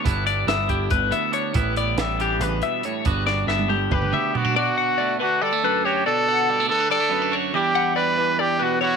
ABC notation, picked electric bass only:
X:1
M:7/8
L:1/8
Q:1/4=140
K:Bm
V:1 name="Picked electric bass" clef=bass
G,,,2 G,,,2 G,,, z2 | A,,,2 A,,,2 A,,, z2 | G,,,2 G,,,2 G,,, z2 | z6 z |
z6 z | z6 z |]